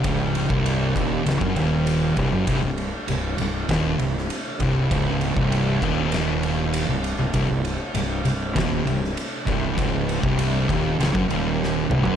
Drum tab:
RD |x-x-x-x-x-x-x-x-|x-x-x-x-x-x-x-x-|x-x-x-x-x-x-x-x-|x-x-x-x-x-x-x-x-|
SD |--------o-------|--------o--o----|--------o-------|--------o--o----|
T2 |----------------|----------------|----------------|----------------|
FT |----------------|----------------|----------------|----------------|
BD |o--o--o--o----o-|o-------o-----o-|o--o--o---------|o-------o-----o-|

RD |x-x-x-x-x-x-----|
SD |--------o---o---|
T2 |--------------o-|
FT |---------------o|
BD |o--o--o--o------|